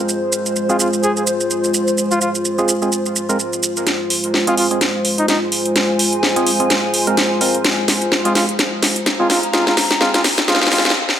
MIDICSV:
0, 0, Header, 1, 6, 480
1, 0, Start_track
1, 0, Key_signature, -4, "minor"
1, 0, Tempo, 472441
1, 88, Time_signature, 4, 2, 24, 8
1, 11376, End_track
2, 0, Start_track
2, 0, Title_t, "Ambient pad"
2, 0, Program_c, 0, 92
2, 0, Note_on_c, 0, 65, 80
2, 0, Note_on_c, 0, 72, 83
2, 0, Note_on_c, 0, 80, 80
2, 3928, Note_off_c, 0, 80, 0
2, 4886, Note_on_c, 0, 80, 75
2, 8802, Note_on_c, 0, 82, 79
2, 8942, Note_off_c, 0, 80, 0
2, 11127, Note_off_c, 0, 72, 0
2, 11127, Note_off_c, 0, 82, 0
2, 11129, Note_off_c, 0, 65, 0
2, 11376, End_track
3, 0, Start_track
3, 0, Title_t, "Analog synth pad"
3, 0, Program_c, 1, 89
3, 0, Note_on_c, 1, 56, 81
3, 0, Note_on_c, 1, 65, 72
3, 0, Note_on_c, 1, 72, 88
3, 3887, Note_off_c, 1, 56, 0
3, 3887, Note_off_c, 1, 65, 0
3, 3887, Note_off_c, 1, 72, 0
3, 3928, Note_on_c, 1, 56, 82
3, 3928, Note_on_c, 1, 65, 76
3, 3928, Note_on_c, 1, 72, 90
3, 11087, Note_off_c, 1, 56, 0
3, 11087, Note_off_c, 1, 65, 0
3, 11087, Note_off_c, 1, 72, 0
3, 11376, End_track
4, 0, Start_track
4, 0, Title_t, "Muted trumpet"
4, 0, Program_c, 2, 59
4, 705, Note_on_c, 2, 65, 88
4, 771, Note_off_c, 2, 65, 0
4, 808, Note_on_c, 2, 65, 72
4, 896, Note_off_c, 2, 65, 0
4, 1048, Note_on_c, 2, 68, 90
4, 1135, Note_off_c, 2, 68, 0
4, 1186, Note_on_c, 2, 68, 70
4, 1251, Note_off_c, 2, 68, 0
4, 2145, Note_on_c, 2, 65, 89
4, 2211, Note_off_c, 2, 65, 0
4, 2247, Note_on_c, 2, 65, 73
4, 2335, Note_off_c, 2, 65, 0
4, 4544, Note_on_c, 2, 65, 88
4, 4611, Note_off_c, 2, 65, 0
4, 4647, Note_on_c, 2, 65, 73
4, 4735, Note_off_c, 2, 65, 0
4, 5265, Note_on_c, 2, 63, 83
4, 5331, Note_off_c, 2, 63, 0
4, 5367, Note_on_c, 2, 63, 73
4, 5455, Note_off_c, 2, 63, 0
4, 8384, Note_on_c, 2, 65, 85
4, 8450, Note_off_c, 2, 65, 0
4, 8486, Note_on_c, 2, 65, 73
4, 8575, Note_off_c, 2, 65, 0
4, 9344, Note_on_c, 2, 65, 85
4, 9410, Note_off_c, 2, 65, 0
4, 9447, Note_on_c, 2, 65, 75
4, 9535, Note_off_c, 2, 65, 0
4, 9687, Note_on_c, 2, 65, 92
4, 9775, Note_off_c, 2, 65, 0
4, 9823, Note_on_c, 2, 65, 78
4, 9890, Note_off_c, 2, 65, 0
4, 10166, Note_on_c, 2, 65, 85
4, 10255, Note_off_c, 2, 65, 0
4, 10304, Note_on_c, 2, 65, 79
4, 10371, Note_off_c, 2, 65, 0
4, 10648, Note_on_c, 2, 65, 98
4, 10736, Note_off_c, 2, 65, 0
4, 10785, Note_on_c, 2, 65, 79
4, 10851, Note_off_c, 2, 65, 0
4, 10889, Note_on_c, 2, 65, 92
4, 10976, Note_off_c, 2, 65, 0
4, 11026, Note_on_c, 2, 65, 79
4, 11091, Note_off_c, 2, 65, 0
4, 11376, End_track
5, 0, Start_track
5, 0, Title_t, "Synth stab"
5, 0, Program_c, 3, 62
5, 705, Note_on_c, 3, 56, 82
5, 705, Note_on_c, 3, 60, 74
5, 705, Note_on_c, 3, 65, 73
5, 705, Note_on_c, 3, 68, 91
5, 912, Note_off_c, 3, 56, 0
5, 912, Note_off_c, 3, 60, 0
5, 912, Note_off_c, 3, 65, 0
5, 912, Note_off_c, 3, 68, 0
5, 2624, Note_on_c, 3, 65, 80
5, 2625, Note_on_c, 3, 56, 87
5, 2625, Note_on_c, 3, 60, 83
5, 2625, Note_on_c, 3, 68, 101
5, 2769, Note_off_c, 3, 56, 0
5, 2769, Note_off_c, 3, 60, 0
5, 2769, Note_off_c, 3, 65, 0
5, 2769, Note_off_c, 3, 68, 0
5, 2864, Note_on_c, 3, 65, 75
5, 2865, Note_on_c, 3, 56, 80
5, 2865, Note_on_c, 3, 60, 74
5, 2865, Note_on_c, 3, 68, 89
5, 2948, Note_off_c, 3, 56, 0
5, 2948, Note_off_c, 3, 60, 0
5, 2948, Note_off_c, 3, 65, 0
5, 2949, Note_off_c, 3, 68, 0
5, 3345, Note_on_c, 3, 56, 81
5, 3345, Note_on_c, 3, 60, 72
5, 3345, Note_on_c, 3, 65, 71
5, 3345, Note_on_c, 3, 70, 89
5, 3428, Note_off_c, 3, 65, 0
5, 3429, Note_off_c, 3, 56, 0
5, 3429, Note_off_c, 3, 60, 0
5, 3429, Note_off_c, 3, 70, 0
5, 4545, Note_on_c, 3, 56, 80
5, 4545, Note_on_c, 3, 60, 74
5, 4545, Note_on_c, 3, 65, 78
5, 4545, Note_on_c, 3, 68, 91
5, 4752, Note_off_c, 3, 56, 0
5, 4752, Note_off_c, 3, 60, 0
5, 4752, Note_off_c, 3, 65, 0
5, 4752, Note_off_c, 3, 68, 0
5, 4785, Note_on_c, 3, 56, 86
5, 4785, Note_on_c, 3, 60, 74
5, 4785, Note_on_c, 3, 65, 73
5, 4785, Note_on_c, 3, 68, 91
5, 4869, Note_off_c, 3, 56, 0
5, 4869, Note_off_c, 3, 60, 0
5, 4869, Note_off_c, 3, 65, 0
5, 4869, Note_off_c, 3, 68, 0
5, 6464, Note_on_c, 3, 68, 99
5, 6465, Note_on_c, 3, 56, 91
5, 6465, Note_on_c, 3, 60, 82
5, 6465, Note_on_c, 3, 65, 79
5, 6609, Note_off_c, 3, 56, 0
5, 6609, Note_off_c, 3, 60, 0
5, 6609, Note_off_c, 3, 65, 0
5, 6609, Note_off_c, 3, 68, 0
5, 6704, Note_on_c, 3, 56, 80
5, 6704, Note_on_c, 3, 60, 77
5, 6704, Note_on_c, 3, 65, 77
5, 6704, Note_on_c, 3, 68, 91
5, 6788, Note_off_c, 3, 56, 0
5, 6788, Note_off_c, 3, 60, 0
5, 6788, Note_off_c, 3, 65, 0
5, 6788, Note_off_c, 3, 68, 0
5, 7185, Note_on_c, 3, 56, 84
5, 7185, Note_on_c, 3, 60, 76
5, 7185, Note_on_c, 3, 65, 79
5, 7185, Note_on_c, 3, 70, 90
5, 7268, Note_off_c, 3, 56, 0
5, 7268, Note_off_c, 3, 60, 0
5, 7268, Note_off_c, 3, 70, 0
5, 7269, Note_off_c, 3, 65, 0
5, 7527, Note_on_c, 3, 60, 70
5, 7527, Note_on_c, 3, 65, 69
5, 7527, Note_on_c, 3, 70, 83
5, 7528, Note_on_c, 3, 56, 74
5, 7695, Note_off_c, 3, 60, 0
5, 7695, Note_off_c, 3, 65, 0
5, 7696, Note_off_c, 3, 56, 0
5, 7696, Note_off_c, 3, 70, 0
5, 8384, Note_on_c, 3, 56, 75
5, 8384, Note_on_c, 3, 60, 73
5, 8384, Note_on_c, 3, 65, 68
5, 8384, Note_on_c, 3, 68, 86
5, 8592, Note_off_c, 3, 56, 0
5, 8592, Note_off_c, 3, 60, 0
5, 8592, Note_off_c, 3, 65, 0
5, 8592, Note_off_c, 3, 68, 0
5, 9345, Note_on_c, 3, 56, 79
5, 9345, Note_on_c, 3, 60, 73
5, 9345, Note_on_c, 3, 65, 74
5, 9345, Note_on_c, 3, 68, 91
5, 9552, Note_off_c, 3, 56, 0
5, 9552, Note_off_c, 3, 60, 0
5, 9552, Note_off_c, 3, 65, 0
5, 9552, Note_off_c, 3, 68, 0
5, 9688, Note_on_c, 3, 56, 84
5, 9688, Note_on_c, 3, 60, 76
5, 9688, Note_on_c, 3, 65, 75
5, 9688, Note_on_c, 3, 68, 91
5, 9903, Note_off_c, 3, 56, 0
5, 9903, Note_off_c, 3, 60, 0
5, 9903, Note_off_c, 3, 65, 0
5, 9903, Note_off_c, 3, 68, 0
5, 10168, Note_on_c, 3, 65, 78
5, 10168, Note_on_c, 3, 68, 89
5, 10169, Note_on_c, 3, 56, 88
5, 10169, Note_on_c, 3, 60, 78
5, 10383, Note_off_c, 3, 65, 0
5, 10383, Note_off_c, 3, 68, 0
5, 10384, Note_off_c, 3, 56, 0
5, 10384, Note_off_c, 3, 60, 0
5, 10648, Note_on_c, 3, 56, 84
5, 10648, Note_on_c, 3, 60, 80
5, 10648, Note_on_c, 3, 65, 79
5, 10648, Note_on_c, 3, 68, 96
5, 10863, Note_off_c, 3, 60, 0
5, 10863, Note_off_c, 3, 65, 0
5, 10863, Note_off_c, 3, 68, 0
5, 10864, Note_off_c, 3, 56, 0
5, 10888, Note_on_c, 3, 65, 83
5, 10888, Note_on_c, 3, 68, 99
5, 10889, Note_on_c, 3, 56, 92
5, 10889, Note_on_c, 3, 60, 80
5, 11103, Note_off_c, 3, 68, 0
5, 11104, Note_off_c, 3, 56, 0
5, 11104, Note_off_c, 3, 60, 0
5, 11104, Note_off_c, 3, 65, 0
5, 11376, End_track
6, 0, Start_track
6, 0, Title_t, "Drums"
6, 88, Note_on_c, 9, 82, 41
6, 190, Note_off_c, 9, 82, 0
6, 328, Note_on_c, 9, 82, 68
6, 430, Note_off_c, 9, 82, 0
6, 465, Note_on_c, 9, 82, 30
6, 566, Note_off_c, 9, 82, 0
6, 569, Note_on_c, 9, 82, 40
6, 670, Note_off_c, 9, 82, 0
6, 706, Note_on_c, 9, 82, 29
6, 807, Note_off_c, 9, 82, 0
6, 809, Note_on_c, 9, 82, 72
6, 910, Note_off_c, 9, 82, 0
6, 946, Note_on_c, 9, 82, 32
6, 1047, Note_off_c, 9, 82, 0
6, 1048, Note_on_c, 9, 82, 39
6, 1150, Note_off_c, 9, 82, 0
6, 1185, Note_on_c, 9, 82, 28
6, 1287, Note_off_c, 9, 82, 0
6, 1288, Note_on_c, 9, 82, 69
6, 1389, Note_off_c, 9, 82, 0
6, 1426, Note_on_c, 9, 82, 33
6, 1527, Note_off_c, 9, 82, 0
6, 1528, Note_on_c, 9, 82, 39
6, 1629, Note_off_c, 9, 82, 0
6, 1665, Note_on_c, 9, 82, 28
6, 1767, Note_off_c, 9, 82, 0
6, 1768, Note_on_c, 9, 82, 66
6, 1869, Note_off_c, 9, 82, 0
6, 1905, Note_on_c, 9, 82, 31
6, 2006, Note_off_c, 9, 82, 0
6, 2008, Note_on_c, 9, 82, 43
6, 2110, Note_off_c, 9, 82, 0
6, 2145, Note_on_c, 9, 82, 31
6, 2247, Note_off_c, 9, 82, 0
6, 2248, Note_on_c, 9, 82, 69
6, 2350, Note_off_c, 9, 82, 0
6, 2385, Note_on_c, 9, 82, 30
6, 2487, Note_off_c, 9, 82, 0
6, 2488, Note_on_c, 9, 82, 41
6, 2589, Note_off_c, 9, 82, 0
6, 2625, Note_on_c, 9, 82, 28
6, 2726, Note_off_c, 9, 82, 0
6, 2727, Note_on_c, 9, 82, 73
6, 2829, Note_off_c, 9, 82, 0
6, 2865, Note_on_c, 9, 82, 31
6, 2967, Note_off_c, 9, 82, 0
6, 2968, Note_on_c, 9, 82, 44
6, 3070, Note_off_c, 9, 82, 0
6, 3106, Note_on_c, 9, 82, 30
6, 3207, Note_off_c, 9, 82, 0
6, 3208, Note_on_c, 9, 82, 70
6, 3310, Note_off_c, 9, 82, 0
6, 3345, Note_on_c, 9, 82, 33
6, 3447, Note_off_c, 9, 82, 0
6, 3448, Note_on_c, 9, 82, 40
6, 3550, Note_off_c, 9, 82, 0
6, 3585, Note_on_c, 9, 82, 30
6, 3686, Note_off_c, 9, 82, 0
6, 3688, Note_on_c, 9, 82, 72
6, 3789, Note_off_c, 9, 82, 0
6, 3825, Note_on_c, 9, 82, 31
6, 3927, Note_off_c, 9, 82, 0
6, 3928, Note_on_c, 9, 38, 45
6, 3928, Note_on_c, 9, 42, 67
6, 4029, Note_off_c, 9, 38, 0
6, 4029, Note_off_c, 9, 42, 0
6, 4168, Note_on_c, 9, 46, 101
6, 4270, Note_off_c, 9, 46, 0
6, 4305, Note_on_c, 9, 42, 53
6, 4407, Note_off_c, 9, 42, 0
6, 4408, Note_on_c, 9, 38, 48
6, 4510, Note_off_c, 9, 38, 0
6, 4545, Note_on_c, 9, 42, 68
6, 4646, Note_off_c, 9, 42, 0
6, 4648, Note_on_c, 9, 46, 102
6, 4749, Note_off_c, 9, 46, 0
6, 4785, Note_on_c, 9, 42, 55
6, 4886, Note_off_c, 9, 42, 0
6, 4887, Note_on_c, 9, 38, 55
6, 4887, Note_on_c, 9, 42, 68
6, 4989, Note_off_c, 9, 38, 0
6, 4989, Note_off_c, 9, 42, 0
6, 5127, Note_on_c, 9, 46, 98
6, 5229, Note_off_c, 9, 46, 0
6, 5265, Note_on_c, 9, 42, 57
6, 5367, Note_off_c, 9, 42, 0
6, 5368, Note_on_c, 9, 38, 55
6, 5368, Note_on_c, 9, 42, 62
6, 5470, Note_off_c, 9, 38, 0
6, 5470, Note_off_c, 9, 42, 0
6, 5608, Note_on_c, 9, 46, 100
6, 5709, Note_off_c, 9, 46, 0
6, 5745, Note_on_c, 9, 42, 52
6, 5847, Note_off_c, 9, 42, 0
6, 5848, Note_on_c, 9, 38, 57
6, 5848, Note_on_c, 9, 42, 67
6, 5950, Note_off_c, 9, 38, 0
6, 5950, Note_off_c, 9, 42, 0
6, 6088, Note_on_c, 9, 46, 107
6, 6190, Note_off_c, 9, 46, 0
6, 6225, Note_on_c, 9, 42, 50
6, 6326, Note_off_c, 9, 42, 0
6, 6328, Note_on_c, 9, 38, 60
6, 6430, Note_off_c, 9, 38, 0
6, 6465, Note_on_c, 9, 42, 66
6, 6567, Note_off_c, 9, 42, 0
6, 6568, Note_on_c, 9, 46, 107
6, 6670, Note_off_c, 9, 46, 0
6, 6705, Note_on_c, 9, 42, 55
6, 6807, Note_off_c, 9, 42, 0
6, 6809, Note_on_c, 9, 38, 66
6, 6809, Note_on_c, 9, 42, 68
6, 6910, Note_off_c, 9, 38, 0
6, 6910, Note_off_c, 9, 42, 0
6, 7048, Note_on_c, 9, 46, 105
6, 7150, Note_off_c, 9, 46, 0
6, 7185, Note_on_c, 9, 42, 55
6, 7287, Note_off_c, 9, 42, 0
6, 7288, Note_on_c, 9, 38, 72
6, 7288, Note_on_c, 9, 42, 66
6, 7390, Note_off_c, 9, 38, 0
6, 7390, Note_off_c, 9, 42, 0
6, 7528, Note_on_c, 9, 46, 108
6, 7629, Note_off_c, 9, 46, 0
6, 7665, Note_on_c, 9, 42, 53
6, 7767, Note_off_c, 9, 42, 0
6, 7767, Note_on_c, 9, 38, 73
6, 7767, Note_on_c, 9, 42, 64
6, 7869, Note_off_c, 9, 38, 0
6, 7869, Note_off_c, 9, 42, 0
6, 8007, Note_on_c, 9, 38, 72
6, 8007, Note_on_c, 9, 46, 109
6, 8109, Note_off_c, 9, 38, 0
6, 8109, Note_off_c, 9, 46, 0
6, 8144, Note_on_c, 9, 42, 51
6, 8246, Note_off_c, 9, 42, 0
6, 8247, Note_on_c, 9, 38, 77
6, 8349, Note_off_c, 9, 38, 0
6, 8384, Note_on_c, 9, 42, 62
6, 8486, Note_off_c, 9, 42, 0
6, 8487, Note_on_c, 9, 38, 83
6, 8487, Note_on_c, 9, 46, 112
6, 8589, Note_off_c, 9, 38, 0
6, 8589, Note_off_c, 9, 46, 0
6, 8624, Note_on_c, 9, 42, 54
6, 8726, Note_off_c, 9, 42, 0
6, 8727, Note_on_c, 9, 38, 81
6, 8727, Note_on_c, 9, 42, 65
6, 8829, Note_off_c, 9, 38, 0
6, 8829, Note_off_c, 9, 42, 0
6, 8966, Note_on_c, 9, 38, 82
6, 8966, Note_on_c, 9, 46, 109
6, 9068, Note_off_c, 9, 38, 0
6, 9068, Note_off_c, 9, 46, 0
6, 9104, Note_on_c, 9, 42, 57
6, 9205, Note_off_c, 9, 42, 0
6, 9207, Note_on_c, 9, 38, 86
6, 9207, Note_on_c, 9, 42, 62
6, 9308, Note_off_c, 9, 38, 0
6, 9308, Note_off_c, 9, 42, 0
6, 9447, Note_on_c, 9, 38, 86
6, 9447, Note_on_c, 9, 46, 106
6, 9548, Note_off_c, 9, 38, 0
6, 9548, Note_off_c, 9, 46, 0
6, 9584, Note_on_c, 9, 42, 51
6, 9686, Note_off_c, 9, 42, 0
6, 9687, Note_on_c, 9, 38, 97
6, 9687, Note_on_c, 9, 42, 62
6, 9789, Note_off_c, 9, 38, 0
6, 9789, Note_off_c, 9, 42, 0
6, 9824, Note_on_c, 9, 38, 86
6, 9926, Note_off_c, 9, 38, 0
6, 9927, Note_on_c, 9, 38, 90
6, 9927, Note_on_c, 9, 46, 114
6, 10029, Note_off_c, 9, 38, 0
6, 10029, Note_off_c, 9, 46, 0
6, 10064, Note_on_c, 9, 38, 84
6, 10064, Note_on_c, 9, 42, 49
6, 10166, Note_off_c, 9, 38, 0
6, 10166, Note_off_c, 9, 42, 0
6, 10167, Note_on_c, 9, 38, 94
6, 10269, Note_off_c, 9, 38, 0
6, 10305, Note_on_c, 9, 38, 85
6, 10305, Note_on_c, 9, 42, 66
6, 10406, Note_off_c, 9, 38, 0
6, 10406, Note_off_c, 9, 42, 0
6, 10407, Note_on_c, 9, 38, 99
6, 10407, Note_on_c, 9, 46, 107
6, 10509, Note_off_c, 9, 38, 0
6, 10509, Note_off_c, 9, 46, 0
6, 10545, Note_on_c, 9, 38, 91
6, 10545, Note_on_c, 9, 42, 54
6, 10646, Note_off_c, 9, 38, 0
6, 10646, Note_off_c, 9, 42, 0
6, 10648, Note_on_c, 9, 38, 105
6, 10648, Note_on_c, 9, 42, 62
6, 10716, Note_off_c, 9, 38, 0
6, 10716, Note_on_c, 9, 38, 92
6, 10750, Note_off_c, 9, 42, 0
6, 10785, Note_off_c, 9, 38, 0
6, 10785, Note_on_c, 9, 38, 92
6, 10836, Note_off_c, 9, 38, 0
6, 10836, Note_on_c, 9, 38, 89
6, 10887, Note_off_c, 9, 38, 0
6, 10887, Note_on_c, 9, 38, 104
6, 10887, Note_on_c, 9, 46, 113
6, 10956, Note_off_c, 9, 38, 0
6, 10956, Note_on_c, 9, 38, 94
6, 10989, Note_off_c, 9, 46, 0
6, 11024, Note_off_c, 9, 38, 0
6, 11024, Note_on_c, 9, 38, 102
6, 11024, Note_on_c, 9, 42, 55
6, 11076, Note_off_c, 9, 38, 0
6, 11076, Note_on_c, 9, 38, 99
6, 11126, Note_off_c, 9, 42, 0
6, 11178, Note_off_c, 9, 38, 0
6, 11264, Note_on_c, 9, 38, 56
6, 11366, Note_off_c, 9, 38, 0
6, 11376, End_track
0, 0, End_of_file